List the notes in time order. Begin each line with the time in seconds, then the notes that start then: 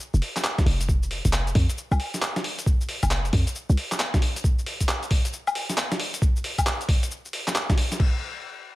0.00 shaker
0.14 F1, shaker
0.22 open hi-hat
0.36 clap, snare, closed hi-hat, shaker
0.44 clap, shaker
0.58 kick, snare, closed hi-hat, shaker
0.66 F1, open hi-hat
0.81 closed hi-hat, shaker
0.89 kick, shaker
1.03 shaker
1.11 open hi-hat
1.25 F1, kick, closed hi-hat, shaker
1.33 clap, shaker
1.47 closed hi-hat, shaker
1.55 F2, kick, open hi-hat
1.69 closed hi-hat, shaker
1.78 shaker
1.91 C2, high woodblock, shaker
2.00 open hi-hat
2.14 snare, closed hi-hat, shaker
2.22 clap, shaker
2.36 snare, closed hi-hat, shaker
2.44 open hi-hat
2.59 closed hi-hat, shaker
2.66 kick, shaker
2.81 shaker
2.89 open hi-hat
3.03 F1, kick, closed hi-hat, high woodblock, shaker
3.11 clap, shaker
3.25 closed hi-hat, shaker
3.33 F2, kick, open hi-hat
3.47 closed hi-hat, shaker
3.55 shaker
3.70 C2, shaker
3.77 open hi-hat
3.92 clap, snare, closed hi-hat, shaker
4.00 clap, shaker
4.14 kick, snare, closed hi-hat, shaker
4.22 open hi-hat
4.36 closed hi-hat, shaker
4.44 kick, shaker
4.59 shaker
4.66 open hi-hat
4.81 kick, closed hi-hat, shaker
4.89 clap, shaker
5.03 closed hi-hat, shaker
5.11 kick, open hi-hat
5.25 closed hi-hat, shaker
5.33 shaker
5.47 high woodblock, shaker
5.55 open hi-hat
5.70 snare, closed hi-hat, shaker
5.78 clap, shaker
5.92 snare, closed hi-hat, shaker
6.00 open hi-hat
6.14 closed hi-hat, shaker
6.22 kick, shaker
6.36 shaker
6.44 open hi-hat
6.58 kick, closed hi-hat, high woodblock, shaker
6.67 clap, shaker
6.81 closed hi-hat, shaker
6.89 kick, open hi-hat
7.03 closed hi-hat, shaker
7.11 shaker
7.25 shaker
7.33 open hi-hat
7.48 clap, snare, closed hi-hat, shaker
7.55 clap, shaker
7.70 kick, snare, closed hi-hat, shaker
7.78 open hi-hat
7.92 snare, closed hi-hat, shaker
8.00 kick, crash